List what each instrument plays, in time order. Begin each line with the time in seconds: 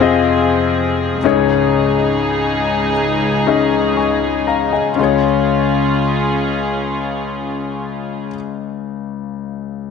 Already playing: grand piano F2 C3 C5, string section F2 F3 C4 G#4
0.00 grand piano C4 F4 G#4 D#5
1.24 grand piano C#2 G#2 C#4 D#4 G#4 C#5, string section C#2 C#3 D#4 G#4
3.47 grand piano C#4 D#4 G#4 D#5
3.97 grand piano G#5 C#6
4.47 grand piano F5 A#5
4.72 grand piano D#5 G#5
4.95 grand piano C#2 C#4 F4, string section C#4 F4
4.99 string section C#3 G#4, grand piano G#4 C#5